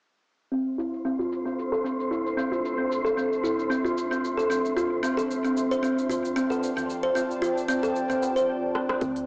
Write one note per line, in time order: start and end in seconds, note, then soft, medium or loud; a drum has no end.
0.51 8.48 C4 medium
0.51 0.65 C4 medium
0.51 5.71 D4 medium
0.51 8.48 C5 medium
0.51 cabasa soft
0.58 5.97 A4 medium
0.78 0.92 E4 medium
0.78 cabasa medium
0.94 cabasa soft
0.99 9.26 C5 medium
1.05 1.18 C4 medium
1.05 cabasa soft
1.18 1.44 F4 medium
1.18 5.71 E5 medium
1.18 cabasa soft
1.32 cabasa medium
1.46 1.57 C4 medium
1.46 cabasa soft
1.59 cabasa soft
1.72 1.83 A4 medium
1.72 cabasa soft
1.84 1.98 C4 medium
1.84 cabasa medium
2.00 cabasa soft
2.11 2.25 E4 medium
2.11 cabasa soft
2.26 cabasa soft
2.37 2.50 C4 medium
2.37 cabasa medium
2.52 2.77 F4 medium
2.52 cabasa soft
2.65 cabasa soft
2.78 2.90 C4 medium
2.92 cabasa medium
3.05 3.16 A4 medium
3.05 cabasa soft
3.17 3.31 C4 medium
3.17 cabasa soft
3.33 cabasa soft
3.44 3.57 E4 medium
3.44 cabasa medium
3.59 cabasa soft
3.70 3.83 C4 medium
3.70 cabasa soft
3.85 4.10 F4 medium
3.85 cabasa soft
3.98 cabasa medium
4.11 4.23 C4 medium
4.11 cabasa soft
4.25 cabasa soft
4.37 4.49 A4 medium
4.37 cabasa soft
4.50 4.64 C4 medium
4.50 cabasa medium
4.65 cabasa soft
4.77 4.90 F4 medium
4.77 9.26 F4 medium
4.77 cabasa soft
5.03 5.16 C4 medium
5.03 cabasa medium
5.17 5.43 A4 medium
5.17 cabasa soft
5.31 cabasa soft
5.38 9.26 A5 medium
5.44 5.56 C4 medium
5.44 9.26 D5 medium
5.44 cabasa soft
5.57 cabasa medium
5.70 5.82 C5 medium
5.70 9.26 G5 medium
5.70 tabla tin soft
5.70 cabasa soft
5.83 5.96 C4 medium
5.83 cabasa soft
5.98 cabasa soft
6.09 6.23 F4 medium
6.09 tabla ge medium
6.09 cabasa medium
6.25 cabasa soft
6.36 6.49 C4 medium
6.36 cabasa soft
6.50 6.75 A4 medium
6.50 tabla na medium
6.50 cabasa soft
6.64 cabasa medium
6.76 6.89 C4 medium
6.76 tabla tin soft
6.76 tabla ge medium
6.76 cabasa soft
6.90 cabasa soft
7.03 7.14 C5 medium
7.15 7.29 C4 medium
7.15 cabasa medium
7.31 cabasa soft
7.42 7.56 F4 medium
7.42 cabasa soft
7.58 cabasa soft
7.68 7.82 C4 medium
7.68 cabasa medium
7.83 8.08 A4 medium
7.83 tabla tin soft
7.83 cabasa soft
7.96 cabasa soft
8.09 8.21 C4 medium
8.09 tabla tin medium
8.09 tabla ge medium
8.09 cabasa soft
8.22 tabla na medium
8.22 cabasa medium
8.36 8.47 C5 medium
8.36 tabla tin soft
8.36 cabasa soft
8.75 cross-stick medium
8.89 cross-stick medium
9.01 9.26 D2 loud
9.01 9.15 C4 medium
9.01 kick loud
9.01 open hi-hat medium
9.01 cabasa soft
9.16 open hi-hat soft